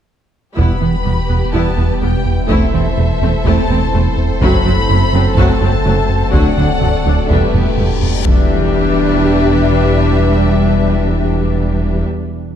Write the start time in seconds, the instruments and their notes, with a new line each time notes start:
0.57 sub bass E1, double bass section E1, cello section E2, analog synth bass E2, french horn section G3 B3, ambient pad G3 B3 E4 B4, viola section B3 E4, violin section G4 B4 B5, taiko
0.81 double bass section E1, cello section E2, analog synth bass E3, viola section B3
1.05 double bass section E1, cello section E2, analog synth bass E2, viola section G3 B3
1.29 double bass section E1, cello section E2, analog synth bass E2, viola section B3
1.53 double bass section E1, cello section E2, analog synth bass E2, french horn section G3 B3, viola section B3 E4, violin section A5
1.77 double bass section E1, cello section E2, analog synth bass E2, viola section B3
2.01 double bass section E1, cello section E2, analog synth bass E2, viola section G3 B3, violin section G5
2.26 analog synth bass E2
2.49 double bass section E1, cello section E2, analog synth bass E2, viola section A3 E4, french horn section A3 C4, ambient pad A3 C4 A4, violin section A4 C5 E5, taiko
2.73 double bass section E1, cello section E2, analog synth bass E3, viola section A3 C4
2.97 double bass section E1, cello section E2, analog synth bass E2, viola section A3
3.21 double bass section E1, analog synth bass E2, cello section E2, viola section A3 C4
3.45 double bass section E1, analog synth bass E2, cello section E2, viola section A3 E4, french horn section A3 C4, violin section A5, taiko
3.69 double bass section E1, cello section E2, analog synth bass E2, viola section A3 C4
3.93 double bass section E1, cello section E2, analog synth bass E2, viola section A3
4.17 analog synth bass E2
4.41 double bass section F#1, sub bass F#1, cello section F#2, analog synth bass F#2, viola section F#3 F#4, french horn section A3 C4, ambient pad F#4, violin section B5, taiko
4.65 double bass section F#1, cello section F#2, analog synth bass F#3, viola section F#3 C4
4.89 double bass section F#1, cello section F#2, analog synth bass F#2, viola section F#3 A3
5.13 double bass section F#1, cello section F#2, analog synth bass F#2, viola section F#3 C4
5.37 double bass section F#1, cello section F#2, analog synth bass F#2, viola section F#3 F#4, french horn section A3 C4, violin section A5, taiko
5.62 double bass section F#1, cello section F#2, analog synth bass F#2, viola section F#3 C4
5.85 double bass section F#1, analog synth bass F#2, cello section F#2, viola section F#3 A3
6.09 analog synth bass F#2
6.33 sub bass D1, double bass section D2, cello section D2, analog synth bass D2, viola section F#3 F#4, french horn section A3 D4, ambient pad D4, violin section A4 D5 F#5, taiko, reverse cymbal
6.57 cello section D2, double bass section D2, analog synth bass D3, viola section F#3 D4
6.81 cello section D2, analog synth bass D2, double bass section D2, viola section F#3 A3, taiko low-mid
7.05 cello section D2, double bass section D2, analog synth bass D2, viola section F#3 D4
7.29 double bass section E1, sub bass E1, cello section E2, analog synth bass E2, ambient pad G3 G4 B4, viola section G3 D4, french horn section G3 D4, violin section G4 B4 E5, taiko
7.53 double bass section E1, cello section E2, analog synth bass E2, viola section G3 B3, taiko low-mid
7.77 double bass section E1, cello section E2, analog synth bass E2, viola section G3, taiko low-mid
8.02 analog synth bass E2, taiko low-mid
8.25 sub bass E1, double bass section E1, cello section E2, viola section G3 D4, ambient pad G3 D4 G4 B4, french horn section G3 D4, violin section G4 B4 E5, taiko, impact